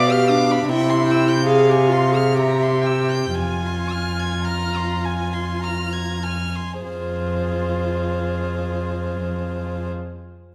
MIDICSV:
0, 0, Header, 1, 5, 480
1, 0, Start_track
1, 0, Key_signature, -4, "minor"
1, 0, Tempo, 787402
1, 405, Time_signature, 3, 2, 24, 8
1, 890, Tempo, 891530
1, 1370, Tempo, 1003344
1, 1850, Tempo, 1104972
1, 2330, Tempo, 1188119
1, 3290, Tempo, 1149425
1, 4841, End_track
2, 0, Start_track
2, 0, Title_t, "Violin"
2, 0, Program_c, 0, 40
2, 0, Note_on_c, 0, 86, 60
2, 70, Note_on_c, 0, 89, 54
2, 79, Note_off_c, 0, 86, 0
2, 181, Note_on_c, 0, 86, 56
2, 190, Note_off_c, 0, 89, 0
2, 314, Note_on_c, 0, 83, 50
2, 323, Note_off_c, 0, 86, 0
2, 418, Note_off_c, 0, 83, 0
2, 437, Note_on_c, 0, 79, 65
2, 547, Note_on_c, 0, 84, 58
2, 556, Note_off_c, 0, 79, 0
2, 675, Note_on_c, 0, 88, 52
2, 685, Note_off_c, 0, 84, 0
2, 789, Note_on_c, 0, 91, 52
2, 799, Note_off_c, 0, 88, 0
2, 901, Note_off_c, 0, 91, 0
2, 907, Note_on_c, 0, 77, 51
2, 1023, Note_on_c, 0, 80, 46
2, 1031, Note_off_c, 0, 77, 0
2, 1136, Note_on_c, 0, 84, 46
2, 1144, Note_off_c, 0, 80, 0
2, 1265, Note_on_c, 0, 89, 41
2, 1273, Note_off_c, 0, 84, 0
2, 1379, Note_off_c, 0, 89, 0
2, 1393, Note_on_c, 0, 82, 46
2, 1502, Note_on_c, 0, 84, 41
2, 1509, Note_off_c, 0, 82, 0
2, 1613, Note_on_c, 0, 88, 38
2, 1620, Note_off_c, 0, 84, 0
2, 1734, Note_on_c, 0, 91, 36
2, 1741, Note_off_c, 0, 88, 0
2, 1855, Note_off_c, 0, 91, 0
2, 1860, Note_on_c, 0, 80, 40
2, 1984, Note_on_c, 0, 84, 38
2, 1991, Note_off_c, 0, 80, 0
2, 2091, Note_on_c, 0, 89, 36
2, 2098, Note_off_c, 0, 84, 0
2, 2215, Note_on_c, 0, 92, 32
2, 2222, Note_off_c, 0, 89, 0
2, 2325, Note_on_c, 0, 89, 34
2, 2331, Note_off_c, 0, 92, 0
2, 2454, Note_on_c, 0, 84, 33
2, 2460, Note_off_c, 0, 89, 0
2, 2566, Note_on_c, 0, 80, 32
2, 2572, Note_off_c, 0, 84, 0
2, 2682, Note_on_c, 0, 84, 33
2, 2688, Note_off_c, 0, 80, 0
2, 2807, Note_on_c, 0, 89, 37
2, 2813, Note_off_c, 0, 84, 0
2, 2922, Note_on_c, 0, 92, 32
2, 2928, Note_off_c, 0, 89, 0
2, 3046, Note_on_c, 0, 89, 29
2, 3052, Note_off_c, 0, 92, 0
2, 3174, Note_on_c, 0, 84, 27
2, 3180, Note_off_c, 0, 89, 0
2, 3286, Note_off_c, 0, 84, 0
2, 3288, Note_on_c, 0, 72, 44
2, 4567, Note_off_c, 0, 72, 0
2, 4841, End_track
3, 0, Start_track
3, 0, Title_t, "Violin"
3, 0, Program_c, 1, 40
3, 0, Note_on_c, 1, 77, 75
3, 407, Note_off_c, 1, 77, 0
3, 415, Note_on_c, 1, 76, 65
3, 643, Note_off_c, 1, 76, 0
3, 649, Note_on_c, 1, 79, 62
3, 882, Note_off_c, 1, 79, 0
3, 886, Note_on_c, 1, 77, 64
3, 1366, Note_on_c, 1, 76, 50
3, 1374, Note_off_c, 1, 77, 0
3, 1593, Note_on_c, 1, 79, 46
3, 1600, Note_off_c, 1, 76, 0
3, 1846, Note_on_c, 1, 80, 49
3, 1853, Note_off_c, 1, 79, 0
3, 2278, Note_off_c, 1, 80, 0
3, 2326, Note_on_c, 1, 82, 47
3, 2570, Note_on_c, 1, 80, 37
3, 2576, Note_off_c, 1, 82, 0
3, 2801, Note_off_c, 1, 80, 0
3, 2804, Note_on_c, 1, 82, 42
3, 3047, Note_on_c, 1, 80, 34
3, 3053, Note_off_c, 1, 82, 0
3, 3287, Note_off_c, 1, 80, 0
3, 3290, Note_on_c, 1, 68, 41
3, 4568, Note_off_c, 1, 68, 0
3, 4841, End_track
4, 0, Start_track
4, 0, Title_t, "Viola"
4, 0, Program_c, 2, 41
4, 64, Note_on_c, 2, 67, 71
4, 181, Note_on_c, 2, 62, 80
4, 190, Note_off_c, 2, 67, 0
4, 420, Note_on_c, 2, 64, 77
4, 429, Note_off_c, 2, 62, 0
4, 887, Note_off_c, 2, 64, 0
4, 891, Note_on_c, 2, 68, 75
4, 1012, Note_on_c, 2, 67, 63
4, 1020, Note_off_c, 2, 68, 0
4, 1120, Note_on_c, 2, 65, 61
4, 1128, Note_off_c, 2, 67, 0
4, 1244, Note_on_c, 2, 68, 64
4, 1252, Note_off_c, 2, 65, 0
4, 1362, Note_on_c, 2, 67, 61
4, 1370, Note_off_c, 2, 68, 0
4, 1845, Note_off_c, 2, 67, 0
4, 1848, Note_on_c, 2, 65, 57
4, 3032, Note_off_c, 2, 65, 0
4, 3290, Note_on_c, 2, 65, 48
4, 4569, Note_off_c, 2, 65, 0
4, 4841, End_track
5, 0, Start_track
5, 0, Title_t, "Cello"
5, 0, Program_c, 3, 42
5, 0, Note_on_c, 3, 47, 72
5, 414, Note_off_c, 3, 47, 0
5, 420, Note_on_c, 3, 48, 67
5, 1837, Note_off_c, 3, 48, 0
5, 1856, Note_on_c, 3, 41, 48
5, 3156, Note_off_c, 3, 41, 0
5, 3290, Note_on_c, 3, 41, 49
5, 4569, Note_off_c, 3, 41, 0
5, 4841, End_track
0, 0, End_of_file